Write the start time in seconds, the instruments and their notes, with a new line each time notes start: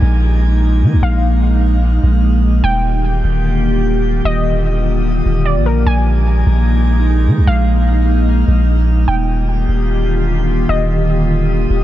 Already playing: ambient pad G#3 A#3 D#4, synth pluck G#5
0.02 808-style bass A#1
0.83 808-style bass F3
0.93 808-style bass A#1
1.03 808-style bass A#1, synth pluck F5
2.04 808-style bass A#1
2.64 808-style bass D#1, ambient pad D3 D#3 F4 G4, synth pluck G5
3.24 808-style bass D#1
4.25 808-style bass D#1, synth pluck D#5
5.26 808-style bass D#1
5.46 synth pluck D5
5.56 808-style bass A#1
5.66 synth pluck A#4
5.86 808-style bass A#1, ambient pad G#3 D#4, synth pluck G#5
6.47 808-style bass A#1
7.27 808-style bass F3
7.37 808-style bass A#1
7.47 808-style bass A#1, synth pluck F5
8.48 808-style bass A#1
9.08 808-style bass D#1, ambient pad D3 D#3 A#3 F4 G4, synth pluck G5
9.69 808-style bass D#1
10.69 808-style bass D#1, synth pluck D#5
11.70 808-style bass D#1